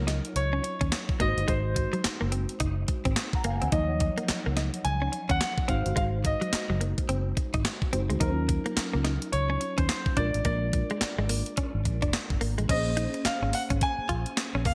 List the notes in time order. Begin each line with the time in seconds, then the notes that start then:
Already playing: C#2 F#3 D#4 F4 A#4 C#5
0.07 D#4, snare, closed hi-hat
0.25 closed hi-hat
0.36 C#2 C#5, closed hi-hat
0.53 C#4
0.64 muted clean electric guitar stroke, closed hi-hat
0.81 D#2 C#4, kick, closed hi-hat
0.92 snare, clap, closed hi-hat
1.09 kick
1.19 G#1 G#3 A#3 D#4 F#4 C5 D#5, kick, closed hi-hat
1.37 G1, closed hi-hat
1.48 G#1 G#3 C5, kick, closed hi-hat
1.76 muted clean electric guitar stroke, kick, closed hi-hat
1.93 F#3, closed hi-hat
2.04 muted clean electric guitar stroke, muted fingered electric bass stroke, snare, clap, closed hi-hat
2.21 F#1 A#3
2.32 C4, closed hi-hat
2.49 closed hi-hat
2.60 F#1 D#4, kick, closed hi-hat
2.88 muted clean electric guitar stroke, kick, closed hi-hat
3.05 G#1 C4, kick, closed hi-hat
3.16 muted clean electric guitar stroke, snare, clap, closed hi-hat
3.33 F#5 A#5, kick
3.44 F#1 A#3 F5 G#5, closed hi-hat
3.62 D2 C4 D#5 F#5, closed hi-hat
3.72 D#2 F3 F#3 D#4 C#5 D#5, kick, closed hi-hat
4.00 muted clean electric guitar stroke, kick, closed hi-hat
4.18 A#3, closed hi-hat
4.28 muted clean electric guitar stroke, muted fingered electric bass stroke, snare, clap, closed hi-hat
4.46 C#2 A#3
4.57 D#4, snare, closed hi-hat
4.74 closed hi-hat
4.84 C#2 G#5, closed hi-hat
5.02 C#4
5.12 muted clean electric guitar stroke, closed hi-hat
5.29 D#2 C#4 F#5, kick, closed hi-hat
5.41 snare, clap, closed hi-hat
5.58 kick
5.68 G#1 G#3 C4 D#4 F#4 C5 F5, kick, closed hi-hat
5.86 G1, closed hi-hat
5.96 G#1 G#3 F5, kick, closed hi-hat
6.24 D#5, muted clean electric guitar stroke, kick, closed hi-hat
6.41 F#3, closed hi-hat
6.53 muted clean electric guitar stroke, muted fingered electric bass stroke, snare, clap, closed hi-hat
6.70 F#1 F#3
6.81 A#3, closed hi-hat
6.98 kick, closed hi-hat
7.09 F#1 C4, closed hi-hat
7.37 muted clean electric guitar stroke, kick, closed hi-hat
7.54 G#1 D#4, kick, closed hi-hat
7.65 muted clean electric guitar stroke, snare, clap, closed hi-hat
7.82 kick
7.93 F#1 G#3 C4 D#4 F#4 C5, closed hi-hat
8.10 D2 G#3, closed hi-hat
8.20 D#2 F#3 D#4 F4 A#4 C5, kick, closed hi-hat
8.29 C#4
8.49 muted clean electric guitar stroke, kick, closed hi-hat
8.66 A#3, closed hi-hat
8.76 muted clean electric guitar stroke, muted fingered electric bass stroke, snare, clap, closed hi-hat
8.93 C#2 A#3
9.04 D#4, snare, closed hi-hat
9.22 closed hi-hat
9.32 C#2 C#5, closed hi-hat
9.50 C#4
9.61 muted clean electric guitar stroke, closed hi-hat
9.78 D#2 C#4 C5, kick, closed hi-hat
9.89 snare, clap, closed hi-hat
10.06 kick
10.17 A#1 G#3 D4 F4 A#4 D5, kick, closed hi-hat
10.34 A1, closed hi-hat
10.45 A#1 A#3 D5, kick, closed hi-hat
10.73 muted clean electric guitar stroke, kick, closed hi-hat
10.90 G#3, closed hi-hat
11.01 muted fingered electric bass stroke, muted clean electric guitar stroke, snare, clap, closed hi-hat
11.18 G#1 G#3
11.29 A#3, open hi-hat
11.46 closed hi-hat
11.57 C#4, kick, closed hi-hat
11.75 G#1
11.85 A#1, muted clean electric guitar stroke, kick, closed hi-hat
12.02 F1 D4, kick, closed hi-hat
12.13 muted clean electric guitar stroke, snare, clap, closed hi-hat
12.30 G1, kick
12.41 G#1 A#3, open hi-hat
12.58 A1 G#3, closed hi-hat
12.68 A#1 A#3 C4 C#4 G#4 C5 D#5, kick, closed hi-hat, crash
12.76 C#4
12.97 D#4, closed hi-hat
13.14 muted clean electric guitar stroke, closed hi-hat
13.25 F5, muted fingered electric bass stroke, snare, clap, closed hi-hat
13.42 G#1 C#4
13.53 F#5, muted clean electric guitar stroke, open hi-hat
13.70 G#1 C#4, kick, closed hi-hat
13.81 G#5, kick, closed hi-hat
13.98 muted fingered electric bass stroke
14.09 A#1 F4, kick, closed hi-hat
14.26 closed hi-hat
14.37 muted clean electric guitar stroke, snare, clap, closed hi-hat
14.55 A#1 C#4
14.65 F#1 A#3 F5, kick, open hi-hat